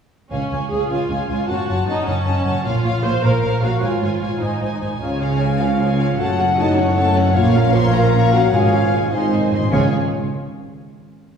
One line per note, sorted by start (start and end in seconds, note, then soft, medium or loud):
0.31 0.39 C#2 soft
0.31 0.68 C#4 medium
0.31 0.49 C#5 soft
0.31 0.49 F5 soft
0.31 0.50 G#5 soft
0.50 0.59 C#2 soft
0.50 0.69 C#5 soft
0.50 0.70 F5 soft
0.50 0.68 G#5 soft
0.70 0.79 C#2 soft
0.70 0.90 G#4 medium
0.70 0.90 C#5 soft
0.70 0.90 F5 soft
0.70 0.88 G#5 soft
0.89 0.97 C#2 soft
0.89 0.98 C#2 soft
0.89 1.26 F4 medium
0.89 1.10 C#5 soft
0.89 1.10 F5 soft
0.89 1.07 G#5 soft
1.09 1.17 C#2 soft
1.09 1.30 C#5 soft
1.09 1.29 F5 soft
1.09 1.27 G#5 soft
1.27 1.36 C#2 soft
1.27 1.47 F4 medium
1.27 1.48 C#5 soft
1.27 1.49 F5 soft
1.27 1.47 G#5 soft
1.48 1.56 F#1 medium
1.48 1.56 F#2 medium
1.48 1.86 F#4 medium
1.48 1.67 C#5 soft
1.48 1.67 F#5 soft
1.48 1.67 A5 soft
1.68 1.75 F#1 soft
1.68 1.76 F#2 soft
1.68 1.87 C#5 soft
1.68 1.87 F#5 soft
1.68 1.86 A5 soft
1.86 1.94 F#1 soft
1.86 1.95 F#2 soft
1.86 2.06 D#4 medium
1.86 2.06 C#5 soft
1.86 2.06 F#5 soft
1.86 2.05 A5 soft
2.06 2.15 F#1 medium
2.06 2.14 F#2 soft
2.06 2.64 C#4 medium
2.06 2.26 C#5 soft
2.06 2.26 F#5 medium
2.06 2.24 A5 soft
2.25 2.34 F#1 medium
2.25 2.33 F#2 soft
2.25 2.45 C#5 soft
2.25 2.45 F#5 soft
2.25 2.44 A5 soft
2.45 2.53 F#1 medium
2.45 2.53 F#2 medium
2.45 2.64 C#5 soft
2.45 2.64 F#5 soft
2.45 2.64 A5 soft
2.64 2.72 A#1 medium
2.64 2.72 A#2 medium
2.64 3.02 F4 medium
2.64 2.82 C#5 medium
2.64 2.83 F5 medium
2.64 2.83 F5 soft
2.83 2.92 A#1 soft
2.83 2.91 A#2 medium
2.83 3.00 C#5 medium
2.83 3.01 F5 soft
2.83 3.02 F5 soft
3.02 3.11 A#1 medium
3.02 3.11 A#2 medium
3.02 3.23 C5 medium
3.02 3.21 C#5 soft
3.02 3.21 F5 soft
3.22 3.30 A#1 medium
3.22 3.31 A#2 soft
3.22 3.62 A#4 medium
3.22 3.40 C#5 soft
3.22 3.41 F5 soft
3.41 3.50 A#1 medium
3.41 3.50 A#2 medium
3.41 3.60 C#5 soft
3.41 3.59 F5 soft
3.60 3.70 A#1 medium
3.60 3.69 A#2 soft
3.60 3.82 F#4 medium
3.60 3.80 C#5 soft
3.60 3.79 F5 soft
3.60 3.80 F5 soft
3.81 3.90 G#1 medium
3.81 3.90 G#2 medium
3.81 4.42 F4 medium
3.81 3.99 C#5 soft
3.81 3.99 F5 soft
3.81 4.01 G#5 soft
4.00 4.09 G#1 soft
4.00 4.10 G#2 soft
4.00 4.20 C#5 soft
4.00 4.20 F5 soft
4.00 4.21 G#5 soft
4.21 4.30 G#1 soft
4.21 4.29 G#2 soft
4.21 4.41 C#5 soft
4.21 4.41 F5 soft
4.21 4.41 G#5 soft
4.41 4.49 G#1 soft
4.41 4.49 G#2 soft
4.41 5.01 D#4 soft
4.41 4.61 C5 soft
4.41 4.61 G#5 soft
4.60 4.69 G#1 soft
4.60 4.68 G#2 soft
4.60 4.81 C5 soft
4.60 4.81 G#5 soft
4.81 4.90 G#1 soft
4.81 4.89 G#2 soft
4.81 5.01 C5 soft
4.81 5.00 G#5 soft
4.81 5.01 G#5 soft
5.01 6.15 C#2 medium
5.01 6.15 G#2 medium
5.01 6.15 C#3 medium
5.01 5.38 C#4 medium
5.01 7.33 C#4 soft
5.01 5.19 F4 soft
5.01 5.19 G#4 soft
5.01 5.38 C#5 medium
5.01 7.32 C#5 medium
5.01 6.18 F5 medium
5.01 6.15 F5 soft
5.01 5.19 G#5 soft
5.01 6.15 G#5 soft
5.21 5.41 C#4 soft
5.21 5.40 F4 soft
5.21 5.40 F5 soft
5.38 5.59 F4 soft
5.38 5.60 G#4 soft
5.38 5.60 G#4 medium
5.38 5.59 G#5 medium
5.38 5.60 G#5 soft
5.59 5.80 C#4 soft
5.59 5.96 F4 medium
5.59 5.79 F4 soft
5.59 5.79 F5 soft
5.59 5.97 F5 medium
5.80 5.98 F4 soft
5.80 5.98 G#4 soft
5.80 5.98 G#5 soft
5.98 6.19 C#4 soft
5.98 6.17 F4 medium
5.98 6.19 F4 soft
5.98 6.06 F5 medium
5.98 6.19 F5 soft
6.17 7.35 F#1 medium
6.17 7.35 F#2 medium
6.17 6.37 A3 medium
6.17 6.58 F#4 medium
6.17 6.37 A4 medium
6.17 7.34 F#5 medium
6.17 7.36 F#5 soft
6.17 6.58 F#5 medium
6.17 6.37 A5 soft
6.17 7.36 A5 soft
6.21 7.37 A2 soft
6.38 6.58 C#4 soft
6.38 6.58 F#4 medium
6.38 6.58 F#5 medium
6.57 6.78 A3 medium
6.57 6.77 D#4 medium
6.57 6.78 A4 medium
6.57 6.76 D#5 medium
6.57 6.78 A5 soft
6.76 6.97 C#4 medium
6.76 6.97 F#4 medium
6.76 7.35 C#5 medium
6.76 6.97 F#5 medium
6.80 7.37 C#4 medium
6.96 7.15 A3 medium
6.96 7.15 A4 medium
6.96 7.14 A5 medium
7.17 7.36 C#4 medium
7.17 7.36 F#4 medium
7.17 7.36 F#5 medium
7.34 8.52 A#1 medium
7.34 8.52 A#2 medium
7.34 7.90 A#2 medium
7.34 7.54 A#3 medium
7.34 7.91 C#4 medium
7.34 7.54 F4 medium
7.34 7.74 F4 loud
7.34 9.14 C#5 medium
7.34 7.53 C#5 medium
7.34 9.13 F5 medium
7.34 7.73 F5 medium
7.34 7.90 F5 medium
7.34 8.50 A#5 medium
7.55 7.75 C#4 medium
7.55 7.75 A#4 medium
7.55 7.74 F5 medium
7.73 7.94 A#3 medium
7.73 7.94 F4 medium
7.73 7.93 C5 medium
7.73 7.93 C#5 medium
7.73 7.94 C6 medium
7.93 8.52 A#2 medium
7.93 8.13 C#4 medium
7.93 8.51 C#4 medium
7.93 8.13 A#4 medium
7.93 8.33 A#4 medium
7.93 8.52 F5 medium
7.93 8.14 F5 medium
7.93 8.33 A#5 medium
8.14 8.31 A#3 medium
8.14 8.31 F4 medium
8.14 8.32 C#5 medium
8.32 8.53 C#4 medium
8.32 8.52 F#4 medium
8.32 8.52 A#4 medium
8.32 8.53 F5 medium
8.32 8.53 F#5 medium
8.52 9.50 G#1 medium
8.52 9.50 G#2 medium
8.52 9.08 G#2 medium
8.52 9.12 G#2 medium
8.52 9.11 C#4 medium
8.52 9.12 F4 medium
8.52 8.71 F4 medium
8.52 8.71 G#4 medium
8.52 9.12 F5 medium
8.52 9.12 G#5 medium
8.52 8.71 G#5 soft
8.52 9.53 G#5 medium
8.73 8.92 C#4 medium
8.73 8.92 F4 medium
8.73 8.93 F5 soft
8.93 9.12 F4 soft
8.93 9.11 G#4 soft
8.93 9.13 G#5 soft
9.11 9.19 G#2 soft
9.11 9.52 G#2 soft
9.11 9.53 C4 medium
9.11 9.31 D#4 soft
9.11 9.73 D#4 medium
9.11 9.31 G#4 soft
9.11 9.52 C5 soft
9.11 9.70 D#5 soft
9.11 9.52 G#5 medium
9.11 9.52 G#5 soft
9.11 9.32 C6 soft
9.22 9.28 G#2 soft
9.29 9.35 G#2 soft
9.33 9.43 G#2 soft
9.33 9.53 C4 soft
9.33 9.53 C5 soft
9.33 9.53 G#5 soft
9.45 9.50 G#2 medium
9.51 9.57 G#2 medium
9.51 9.73 D#4 soft
9.51 9.72 G#4 soft
9.51 9.73 C6 soft
9.58 9.65 G#2 medium
9.71 9.93 C#2 medium
9.71 9.90 G#2 medium
9.71 9.93 C#3 medium
9.71 9.90 C#3 medium
9.71 9.89 C#4 medium
9.71 9.95 F4 medium
9.71 9.94 G#4 medium
9.71 9.93 C#5 medium
9.71 9.88 C#5 medium
9.71 9.87 F5 medium
9.71 9.89 F5 medium
9.71 9.93 G#5 medium
9.71 9.95 G#5 medium
9.75 9.90 C#4 medium